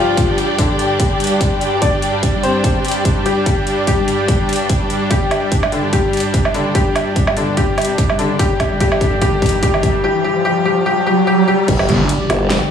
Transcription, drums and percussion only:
0.17 kick loud
0.17 closed hi-hat medium
0.38 closed hi-hat medium
0.58 kick loud
0.58 closed hi-hat medium
0.79 closed hi-hat medium
1.00 kick medium
1.00 closed hi-hat medium
1.20 closed hi-hat medium
1.24 closed hi-hat medium
1.27 closed hi-hat medium
1.41 kick loud
1.41 closed hi-hat medium
1.61 closed hi-hat medium
1.82 kick loud
1.82 closed hi-hat medium
2.02 closed hi-hat medium
2.23 kick loud
2.23 closed hi-hat medium
2.43 closed hi-hat medium
2.64 kick medium
2.64 closed hi-hat medium
2.85 closed hi-hat soft
2.88 closed hi-hat medium
2.91 closed hi-hat medium
3.05 kick loud
3.05 closed hi-hat medium
3.26 closed hi-hat medium
3.46 kick loud
3.46 closed hi-hat medium
3.67 closed hi-hat soft
3.87 kick loud
3.87 closed hi-hat medium
4.08 closed hi-hat medium
4.28 kick medium
4.28 closed hi-hat medium
4.49 closed hi-hat soft
4.53 closed hi-hat medium
4.56 closed hi-hat medium
4.69 kick loud
4.69 closed hi-hat medium
4.90 closed hi-hat medium
5.11 kick loud
5.11 closed hi-hat medium
5.31 closed hi-hat soft
5.31 low woodblock medium
5.52 kick loud
5.52 closed hi-hat medium
5.63 low woodblock medium
5.72 closed hi-hat soft
5.93 kick loud
5.93 closed hi-hat medium
6.13 closed hi-hat soft
6.17 closed hi-hat medium
6.20 closed hi-hat medium
6.34 kick loud
6.34 closed hi-hat medium
6.45 low woodblock medium
6.54 closed hi-hat soft
6.75 kick loud
6.75 closed hi-hat medium
6.96 closed hi-hat soft
6.96 low woodblock medium
7.16 kick loud
7.16 closed hi-hat medium
7.27 low woodblock medium
7.37 closed hi-hat medium
7.57 kick loud
7.57 closed hi-hat medium
7.78 closed hi-hat soft
7.78 low woodblock medium
7.82 closed hi-hat medium
7.85 closed hi-hat medium
7.98 kick loud
7.98 closed hi-hat medium
8.10 low woodblock medium
8.19 closed hi-hat soft
8.39 kick loud
8.39 closed hi-hat medium
8.60 kick loud
8.60 closed hi-hat medium
8.60 low woodblock medium
8.80 kick loud
8.80 closed hi-hat medium
8.92 low woodblock medium
9.01 kick loud
9.01 closed hi-hat medium
9.22 kick loud
9.22 closed hi-hat medium
9.42 kick loud
9.42 closed hi-hat soft
9.46 closed hi-hat medium
9.49 closed hi-hat medium
9.63 kick loud
9.63 closed hi-hat medium
9.74 low woodblock medium
9.83 kick loud
9.83 closed hi-hat medium
11.68 kick loud
11.68 closed hi-hat medium
11.68 crash loud
11.79 low woodblock medium
11.89 closed hi-hat medium
12.09 closed hi-hat medium
12.30 closed hi-hat medium
12.30 low woodblock medium
12.50 snare loud
12.50 closed hi-hat medium

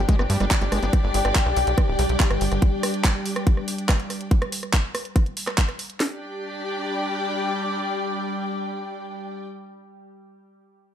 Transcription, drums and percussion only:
0.09 kick loud
0.09 closed hi-hat medium
0.19 cross-stick medium
0.30 open hi-hat loud
0.40 cross-stick soft
0.40 closed hi-hat medium
0.51 kick loud
0.51 clap loud
0.51 closed hi-hat medium
0.61 closed hi-hat soft
0.72 cross-stick medium
0.72 open hi-hat medium
0.83 closed hi-hat medium
0.93 kick loud
0.93 cross-stick soft
0.93 closed hi-hat medium
1.14 open hi-hat loud
1.25 cross-stick medium
1.25 closed hi-hat medium
1.35 kick loud
1.35 clap loud
1.35 closed hi-hat medium
1.46 cross-stick soft
1.57 open hi-hat loud
1.67 closed hi-hat medium
1.78 kick loud
1.78 cross-stick medium
1.78 closed hi-hat medium
1.99 cross-stick soft
1.99 open hi-hat loud
2.09 closed hi-hat medium
2.20 kick loud
2.20 clap loud
2.20 closed hi-hat medium
2.30 cross-stick medium
2.30 closed hi-hat soft
2.41 open hi-hat medium
2.52 cross-stick soft
2.52 closed hi-hat medium
2.62 kick loud
2.62 closed hi-hat medium
2.83 cross-stick medium
2.83 open hi-hat loud
2.94 closed hi-hat soft
3.04 kick loud
3.04 cross-stick soft
3.04 clap loud
3.04 closed hi-hat medium
3.26 open hi-hat loud
3.36 cross-stick medium
3.36 closed hi-hat medium
3.47 kick loud
3.47 closed hi-hat medium
3.57 cross-stick soft
3.68 open hi-hat loud
3.78 closed hi-hat soft
3.89 kick loud
3.89 cross-stick medium
3.89 clap loud
3.89 closed hi-hat medium
4.00 closed hi-hat soft
4.10 cross-stick soft
4.10 open hi-hat medium
4.21 closed hi-hat soft
4.31 kick loud
4.31 closed hi-hat medium
4.42 cross-stick medium
4.42 closed hi-hat soft
4.52 open hi-hat loud
4.63 cross-stick soft
4.63 closed hi-hat soft
4.73 kick loud
4.73 clap loud
4.73 closed hi-hat medium
4.95 cross-stick medium
4.95 open hi-hat medium
5.05 closed hi-hat soft
5.16 kick loud
5.16 cross-stick soft
5.16 closed hi-hat medium
5.26 closed hi-hat soft
5.37 open hi-hat loud
5.47 cross-stick medium
5.47 clap soft
5.47 closed hi-hat soft
5.58 kick loud
5.58 clap loud
5.58 closed hi-hat medium
5.69 cross-stick soft
5.69 closed hi-hat soft
5.79 open hi-hat medium
5.90 closed hi-hat soft
6.00 snare loud
6.00 open hi-hat medium

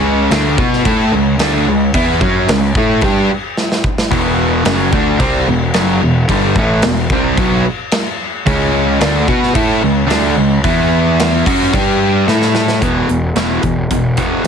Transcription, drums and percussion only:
0.31 snare loud
0.31 crash medium
0.58 kick loud
0.73 snare soft
0.85 kick medium
0.85 crash medium
1.39 snare loud
1.39 crash medium
1.94 kick medium
1.94 crash medium
2.21 kick medium
2.48 snare loud
2.48 crash medium
2.75 kick loud
3.01 kick loud
3.01 crash medium
3.57 snare medium
3.72 snare medium
3.84 kick medium
3.98 snare medium
4.12 kick medium
4.12 crash medium
4.65 snare loud
4.65 crash medium
4.93 kick loud
5.20 kick loud
5.20 crash medium
5.74 snare medium
5.74 crash medium
6.29 kick medium
6.29 crash medium
6.56 kick loud
6.82 snare loud
6.82 crash medium
7.10 kick loud
7.37 kick loud
7.37 crash medium
7.91 snare loud
7.91 crash medium
8.47 kick medium
8.47 crash medium
9.01 snare loud
9.01 crash medium
9.28 kick loud
9.43 snare soft
9.55 kick loud
9.55 crash medium
10.10 snare loud
10.10 crash medium
10.64 kick medium
10.64 crash medium
11.19 snare loud
11.19 crash medium
11.46 kick loud
11.46 crash medium
11.62 snare soft
11.73 kick loud
11.73 crash medium
12.28 snare medium
12.42 snare medium
12.55 snare medium
12.68 snare medium
12.82 kick medium
12.82 closed hi-hat medium
13.09 closed hi-hat soft
13.36 snare loud
13.36 closed hi-hat medium
13.63 kick medium
13.63 closed hi-hat soft
13.91 kick medium
13.91 closed hi-hat medium
14.17 kick medium
14.17 closed hi-hat medium

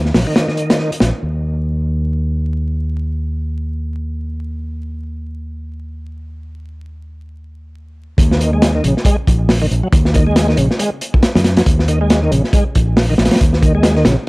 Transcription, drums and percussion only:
0.05 snare soft
0.14 snare loud
0.14 open hi-hat medium
0.36 snare loud
0.36 closed hi-hat medium
0.48 snare soft
0.57 closed hi-hat medium
0.70 snare loud
0.70 closed hi-hat medium
0.79 snare soft
0.92 closed hi-hat medium
1.00 snare loud
1.00 closed hi-hat medium
8.18 kick loud
8.18 closed hi-hat medium
8.31 snare medium
8.41 closed hi-hat medium
8.62 snare loud
8.62 closed hi-hat medium
8.84 closed hi-hat medium
8.97 snare soft
9.05 kick loud
9.05 closed hi-hat loud
9.27 kick medium
9.27 closed hi-hat medium
9.49 snare loud
9.49 open hi-hat medium
9.71 closed hi-hat medium
9.92 kick loud
9.92 closed hi-hat medium
10.05 snare soft
10.14 kick medium
10.14 closed hi-hat medium
10.36 snare loud
10.36 closed hi-hat medium
10.49 snare soft
10.57 closed hi-hat medium
10.71 snare soft
10.79 closed hi-hat medium
11.01 closed hi-hat medium
11.14 kick medium
11.23 snare loud
11.23 closed hi-hat medium
11.35 snare loud
11.35 closed hi-hat medium
11.44 snare loud
11.44 closed hi-hat medium
11.57 snare loud
11.57 closed hi-hat medium
11.66 kick loud
11.66 closed hi-hat medium
11.79 snare soft
11.88 closed hi-hat medium
12.10 snare loud
12.10 closed hi-hat medium
12.32 closed hi-hat medium
12.44 snare soft
12.53 kick loud
12.53 closed hi-hat medium
12.75 kick medium
12.75 closed hi-hat medium
12.97 snare loud
12.97 open hi-hat medium
13.18 snare medium
13.18 closed hi-hat medium
13.25 snare medium
13.25 closed hi-hat medium
13.31 snare medium
13.31 closed hi-hat medium
13.35 snare medium
13.35 closed hi-hat medium
13.41 kick loud
13.41 closed hi-hat medium
13.53 snare soft
13.63 kick loud
13.63 closed hi-hat medium
13.83 snare loud
13.83 closed hi-hat medium
13.96 snare soft
14.05 snare loud
14.05 closed hi-hat medium

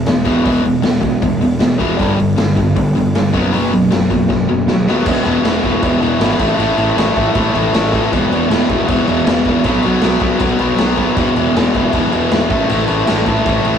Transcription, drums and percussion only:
0.06 snare loud
0.06 open hi-hat medium
0.25 kick medium
0.25 open hi-hat medium
0.45 kick loud
0.45 open hi-hat medium
0.66 open hi-hat medium
0.83 snare loud
0.83 open hi-hat medium
1.03 kick medium
1.03 open hi-hat medium
1.22 kick loud
1.22 open hi-hat medium
1.42 open hi-hat medium
1.60 snare loud
1.60 open hi-hat medium
1.80 kick medium
1.80 open hi-hat medium
1.99 kick loud
1.99 open hi-hat medium
2.20 open hi-hat medium
2.38 snare loud
2.38 open hi-hat medium
2.57 kick medium
2.57 open hi-hat medium
2.76 kick loud
2.76 open hi-hat medium
2.97 open hi-hat medium
3.15 snare loud
3.15 open hi-hat medium
3.34 kick medium
3.34 open hi-hat medium
3.53 open hi-hat medium
3.73 open hi-hat medium
3.92 snare loud
3.92 open hi-hat medium
4.11 kick medium
4.11 open hi-hat medium
4.30 kick loud
4.30 snare medium
4.68 snare medium
4.87 snare medium
5.06 kick loud
5.06 crash loud
5.06 crash medium
5.25 crash medium
5.45 snare loud
5.45 crash loud
5.63 kick medium
5.63 crash medium
5.83 kick loud
5.83 crash medium
6.02 crash medium
6.21 snare loud
6.21 crash medium
6.39 kick loud
6.39 crash loud
6.60 crash medium
6.78 crash medium
6.98 snare loud
6.98 crash medium
7.17 kick medium
7.17 crash medium
7.35 kick loud
7.35 crash medium
7.55 crash medium
7.74 snare loud
7.74 crash medium
7.93 kick medium
7.93 crash medium
8.13 kick loud
8.13 crash medium
8.32 crash medium
8.51 snare loud
8.51 crash medium
8.69 kick medium
8.69 crash medium
8.88 kick loud
8.88 crash medium
9.08 crash medium
9.27 snare loud
9.27 crash loud
9.45 kick medium
9.45 crash medium
9.64 kick loud
9.64 crash medium
9.82 crash medium
10.02 snare loud
10.02 crash medium
10.20 kick medium
10.20 crash medium
10.40 kick loud
10.40 crash medium
10.59 crash medium
10.78 snare loud
10.78 crash medium
10.97 kick medium
10.97 crash medium
11.17 kick loud
11.17 crash medium
11.36 crash medium
11.56 snare loud
11.56 crash medium
11.74 kick medium
11.74 crash medium
11.93 kick loud
11.93 crash medium
12.12 crash medium
12.31 snare loud
12.31 crash medium
12.50 kick loud
12.50 crash medium
12.70 crash medium
12.87 crash medium
13.07 snare loud
13.07 crash loud
13.26 kick medium
13.26 crash medium
13.46 kick loud
13.46 crash medium
13.65 crash medium

